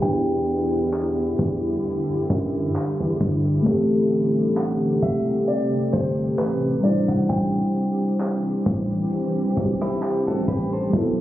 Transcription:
0.00 1.35 E2 loud
0.00 3.63 D3 medium
0.00 3.62 D4 medium
0.00 3.62 E4 medium
0.00 3.60 G4 medium
0.00 3.62 G4 medium
0.00 3.16 G5 loud
0.00 kick loud
0.00 closed hi-hat medium
0.05 3.63 E4 medium
0.05 3.65 B4 medium
0.47 closed hi-hat medium
0.94 clap loud
0.94 closed hi-hat medium
1.39 1.78 E2 medium
1.39 kick medium
1.84 closed hi-hat medium
2.09 2.17 F#2 soft
2.30 2.69 F#2 medium
2.30 kick medium
2.30 closed hi-hat medium
2.45 closed hi-hat medium
2.60 closed hi-hat medium
2.75 clap loud
2.75 closed hi-hat medium
2.91 closed hi-hat medium
3.00 3.18 E2 medium
3.06 closed hi-hat medium
3.21 3.60 G1 loud
3.21 kick medium
3.21 closed hi-hat medium
3.62 4.99 A1 loud
3.62 6.81 C3 medium
3.62 6.79 A3 medium
3.62 6.80 C4 medium
3.62 6.81 C4 medium
3.62 10.89 G4 medium
3.62 kick loud
3.62 closed hi-hat medium
3.68 6.81 G4 medium
3.68 6.83 A4 medium
4.10 closed hi-hat medium
4.57 5.04 F#5 medium
4.57 clap loud
4.57 closed hi-hat medium
5.02 5.42 E1 medium
5.02 5.49 E5 medium
5.02 kick loud
5.48 5.90 D5 medium
5.48 closed hi-hat medium
5.73 5.81 G1 soft
5.93 6.33 G1 medium
5.93 6.40 C5 medium
5.93 kick loud
5.93 closed hi-hat medium
6.08 closed hi-hat medium
6.24 closed hi-hat medium
6.38 6.78 A1 medium
6.38 6.81 B4 medium
6.38 clap medium
6.38 closed hi-hat medium
6.54 closed hi-hat medium
6.69 closed hi-hat medium
6.80 7.62 A1 medium
6.80 11.21 E3 medium
6.80 10.42 G3 medium
6.80 10.89 C4 medium
6.80 10.43 D4 medium
6.80 7.09 D5 medium
6.85 10.45 E4 medium
6.85 closed hi-hat medium
6.89 10.46 C5 medium
7.08 7.30 F#5 medium
7.08 kick medium
7.29 8.16 G5 loud
7.29 kick loud
7.29 closed hi-hat medium
7.74 closed hi-hat medium
8.21 clap loud
8.21 closed hi-hat medium
8.66 9.05 A1 medium
8.66 kick loud
9.12 closed hi-hat medium
9.36 9.45 B1 soft
9.56 9.96 B1 loud
9.56 kick medium
9.56 closed hi-hat medium
9.81 10.02 C4 medium
9.81 10.02 E4 medium
9.81 cross-stick medium
10.03 10.26 E4 medium
10.03 10.26 G4 medium
10.03 clap loud
10.03 closed hi-hat medium
10.27 10.45 A1 loud
10.27 10.47 F#4 medium
10.27 10.47 A4 medium
10.48 10.87 A1 medium
10.48 10.72 G4 medium
10.48 10.71 B4 medium
10.48 kick medium
10.48 closed hi-hat medium
10.73 11.16 A4 medium
10.73 11.16 C5 medium
10.90 11.21 B1 loud
10.90 11.21 F#3 medium
10.90 11.21 B3 medium
10.90 kick loud
10.90 closed hi-hat medium
10.96 11.21 E4 medium
10.96 11.21 A4 medium

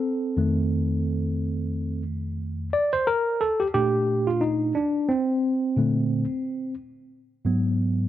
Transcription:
0.00 2.02 C4 medium
0.00 2.02 A4 medium
0.37 2.69 F2 medium
0.37 2.70 D#3 soft
0.37 2.70 A3 medium
2.73 2.92 D5 medium
2.93 3.08 C5 medium
3.07 3.42 A#4 medium
3.41 3.61 A4 loud
3.60 3.66 G4 medium
3.74 4.72 A#2 medium
3.74 4.72 A3 medium
3.74 4.72 D4 soft
3.74 4.29 G4 medium
4.27 4.42 F4 medium
4.41 4.76 D#4 medium
4.75 5.10 D4 medium
5.09 6.74 C4 medium
5.77 6.24 A#2 medium
5.77 6.24 D3 medium
5.77 6.24 A3 medium
7.45 8.09 G#2 medium
7.45 8.09 F#3 medium
7.45 8.09 B3 medium

